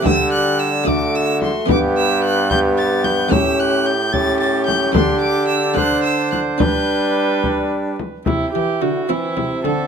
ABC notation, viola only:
X:1
M:6/8
L:1/8
Q:3/8=73
K:G
V:1 name="Viola"
G3 F3 | G3 G3 | G3 G3 | G3 c3 |
B4- B z | E G F E2 A |]